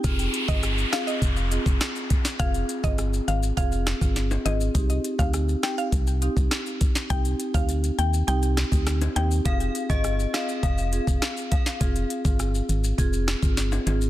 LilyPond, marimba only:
\new Staff \with { instrumentName = "Marimba" } { \time 4/4 \key f \dorian \tempo 4 = 102 <c' f' aes'>16 r8 <c' f' aes'>16 r8 <c' f' aes'>16 r8. <c' f' aes'>16 r4 r16 | <c' f' aes'>16 r8 <c' f' aes'>16 r4 <c' f' aes'>16 r8 <c' f' aes'>16 r8 <c' f' aes'>16 r16 | <c' ees' g'>16 r8 <c' ees' g'>16 r8 c'16 r8. <c' ees' g'>16 r4 r16 | <c' ees' g'>16 r8 <c' ees' g'>16 r4 <c' ees' g'>16 r8 <c' ees' g'>16 r8 <c' ees' g'>16 r16 |
<c' f' aes'>16 r8 <c' f' aes'>16 r8 <c' f' aes'>16 r8. <c' f' aes'>16 r4 r16 | <c' f' aes'>16 r8 <c' f' aes'>16 r4 <c' f' aes'>16 r8 <c' f' aes'>16 r8 <c' f' aes'>16 r16 | }